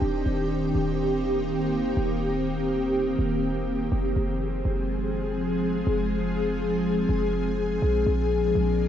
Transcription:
Already playing: ambient pad D#3 C4 G4
0.02 808-style bass D#1, ambient pad A#3
0.26 808-style bass D#1
0.75 808-style bass D#1
1.97 808-style bass D#1
3.19 808-style bass D#1
3.92 808-style bass F1, ambient pad F3 G#3 G#4
4.16 808-style bass F1
4.65 808-style bass F1
5.87 808-style bass F1
7.09 808-style bass F1
7.82 808-style bass A#1, ambient pad F3 A#3 D4
8.07 808-style bass A#1
8.55 808-style bass A#1

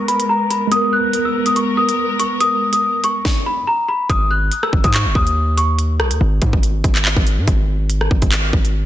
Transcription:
Already playing: tine electric piano G#3 B3 A#4, string section G#3 B3 A#4
0.08 celesta B5, closed hi-hat
0.20 closed hi-hat
0.29 celesta A#5
0.50 celesta B5, closed hi-hat
0.67 tine electric piano G#3
0.72 string section B3 A#4, tine electric piano B3, celesta D#6, closed hi-hat
0.76 tine electric piano A#4
0.93 celesta F#6
1.13 closed hi-hat
1.25 celesta E6
1.46 celesta D#6, closed hi-hat
1.56 celesta C#6, closed hi-hat
1.77 celesta D#6
1.89 closed hi-hat
2.19 celesta C#6, closed hi-hat
2.40 celesta D#6, closed hi-hat
2.73 celesta D#6, closed hi-hat
3.04 celesta C#6, closed hi-hat
3.25 kick, snare
3.46 celesta B5
3.67 celesta A#5
3.88 celesta B5
4.10 808-style bass G#1, celesta D#6, kick, closed hi-hat
4.31 celesta F#6
4.52 closed hi-hat
4.63 celesta E6, cross-stick
4.73 808-style bass G#1, kick
4.84 808-style bass G#2, celesta D#6, kick, closed hi-hat
4.94 celesta C#6, clap, closed hi-hat
5.05 808-style bass F#1
5.15 808-style bass D#2, celesta D#6, kick
5.27 closed hi-hat
5.57 celesta C#6, closed hi-hat
5.79 closed hi-hat
6.00 808-style bass B1, cross-stick
6.11 808-style bass D#2, closed hi-hat
6.21 808-style bass G#1
6.42 808-style bass G#2, kick, closed hi-hat
6.53 808-style bass G#1, kick
6.63 closed hi-hat
6.84 808-style bass G#1, kick, closed hi-hat
6.95 clap, closed hi-hat
7.05 clap
7.17 808-style bass G#1, kick
7.27 closed hi-hat
7.38 808-style bass G#2
7.48 808-style bass G#1, kick, closed hi-hat
7.90 closed hi-hat
8.01 cross-stick
8.11 808-style bass G#1, kick
8.22 808-style bass G#1, kick, closed hi-hat
8.32 clap, closed hi-hat
8.53 808-style bass G#1, kick
8.65 closed hi-hat

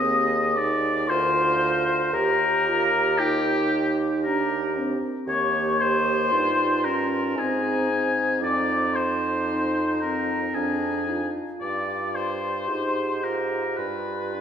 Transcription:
Already playing: bassoon D#2, oboe D#5, flute D#6
0.02 french horn A#3, clarinet G#4
0.55 french horn D#4, oboe D5, flute D6
1.08 bassoon D2, french horn F4, clarinet A#4, oboe C5, flute C6
2.12 bassoon D#2, clarinet G4, french horn G4, oboe A#4, flute A#5
2.68 french horn F4
3.18 french horn D#4, oboe G4, clarinet G4, flute G5
4.23 french horn D4, clarinet G4, oboe A#4, flute A#5
4.77 french horn C4
5.27 bassoon D#2, french horn A#3, clarinet G4, oboe C#5, flute C#6
5.79 oboe C5, flute C6
6.31 bassoon G2, french horn D#4, clarinet F4
6.84 french horn C#4, oboe A#4, flute A#5
7.36 bassoon G#2, french horn C4, clarinet D#4, oboe G#4, flute G#5
7.89 french horn C4
8.41 bassoon F2, clarinet D#4, oboe D5, flute D6
8.93 oboe C5, flute C6
9.49 french horn D#4
10.01 french horn C4, oboe A#4, flute A#5
10.54 bassoon F2, clarinet D4, french horn D4, oboe G#4, flute G#5
11.07 clarinet D#4, french horn F4
11.61 bassoon G2, clarinet F4, oboe D5, flute D6
12.15 oboe C5, flute C6
12.68 bassoon G#2, french horn D#4, clarinet G4
13.23 french horn F4, oboe A#4, flute A#5
13.77 bassoon G2, clarinet F4, french horn G4, oboe B4, flute B5
14.33 french horn D4

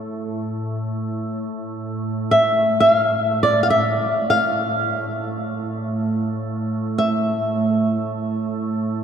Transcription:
Already playing: ambient pad A2, nylon-string guitar A4
1.51 ambient pad A2
2.31 nylon-string guitar E5
2.80 nylon-string guitar E5
2.92 nylon-string guitar F5
3.43 nylon-string guitar D5
3.63 nylon-string guitar F5
3.70 nylon-string guitar E5
4.30 nylon-string guitar F5
6.98 nylon-string guitar E5

